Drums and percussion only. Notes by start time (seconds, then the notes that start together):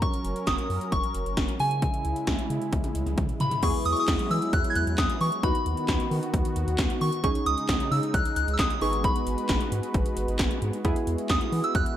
0.02 kick, closed hi-hat
0.14 closed hi-hat
0.25 closed hi-hat
0.36 closed hi-hat
0.47 kick, snare, closed hi-hat
0.58 closed hi-hat
0.70 open hi-hat
0.81 closed hi-hat
0.92 kick, closed hi-hat
1.04 closed hi-hat
1.15 closed hi-hat
1.26 closed hi-hat
1.37 kick, snare, closed hi-hat
1.48 closed hi-hat
1.60 open hi-hat
1.71 closed hi-hat
1.82 kick, closed hi-hat
1.94 closed hi-hat
2.05 closed hi-hat
2.16 closed hi-hat
2.27 kick, snare, closed hi-hat
2.39 closed hi-hat
2.50 closed hi-hat
2.62 closed hi-hat
2.73 kick, closed hi-hat, high tom
2.84 closed hi-hat, high tom
2.95 closed hi-hat
3.06 closed hi-hat, mid tom
3.18 kick, closed hi-hat, mid tom
3.29 closed hi-hat
3.40 closed hi-hat, floor tom
3.51 closed hi-hat, floor tom
3.63 kick, closed hi-hat, crash
3.74 closed hi-hat
3.85 closed hi-hat
3.97 closed hi-hat
4.08 kick, snare, clap, closed hi-hat
4.19 closed hi-hat
4.31 open hi-hat
4.42 closed hi-hat
4.53 kick, closed hi-hat
4.64 closed hi-hat
4.75 closed hi-hat
4.87 closed hi-hat
4.98 kick, snare, clap, closed hi-hat
5.10 closed hi-hat
5.21 open hi-hat
5.32 closed hi-hat
5.43 kick, closed hi-hat
5.55 closed hi-hat
5.66 closed hi-hat
5.77 closed hi-hat
5.88 kick, snare, clap, closed hi-hat
6.00 closed hi-hat
6.11 open hi-hat
6.23 closed hi-hat
6.34 kick, closed hi-hat
6.45 closed hi-hat
6.56 closed hi-hat
6.68 closed hi-hat
6.78 kick, snare, clap, closed hi-hat
6.90 closed hi-hat
7.01 open hi-hat
7.12 closed hi-hat
7.24 kick, closed hi-hat
7.35 closed hi-hat
7.46 closed hi-hat
7.58 closed hi-hat
7.69 kick, snare, clap, closed hi-hat
7.80 closed hi-hat
7.92 open hi-hat
8.03 closed hi-hat
8.14 kick, closed hi-hat
8.25 closed hi-hat
8.36 closed hi-hat
8.48 closed hi-hat
8.59 kick, snare, clap, closed hi-hat
8.70 closed hi-hat
8.81 open hi-hat
8.93 closed hi-hat
9.04 kick, closed hi-hat
9.16 closed hi-hat
9.27 closed hi-hat
9.38 closed hi-hat
9.49 kick, snare, clap, closed hi-hat
9.61 closed hi-hat
9.72 closed hi-hat
9.83 closed hi-hat
9.94 kick, closed hi-hat
10.06 closed hi-hat
10.17 closed hi-hat
10.28 closed hi-hat
10.39 kick, snare, clap, closed hi-hat
10.51 closed hi-hat
10.62 closed hi-hat
10.73 closed hi-hat
10.85 kick, closed hi-hat
10.96 closed hi-hat
11.07 closed hi-hat
11.18 closed hi-hat
11.29 kick, snare, clap, closed hi-hat
11.41 closed hi-hat
11.52 open hi-hat
11.64 closed hi-hat
11.75 kick, closed hi-hat
11.86 closed hi-hat